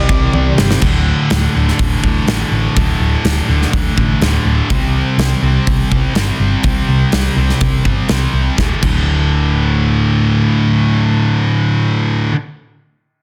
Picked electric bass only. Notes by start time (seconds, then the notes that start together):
0.09 C2
0.34 C2
0.58 G1
0.82 D1
1.31 D1
1.56 D1
1.79 D1
2.03 D1
2.27 A1
2.52 A1
2.76 D1
2.99 D1
3.24 D1
3.49 D1
3.73 D1
3.98 A1
4.21 D1
4.45 D1
4.70 C2
5.18 C2
5.42 C2
5.67 C2
5.91 C2
6.14 G1
6.39 G1
6.63 C2
6.88 C2
7.12 C2
7.36 C2
7.61 C2
7.85 G1
8.10 C2
8.33 C2
8.58 D1
8.83 D1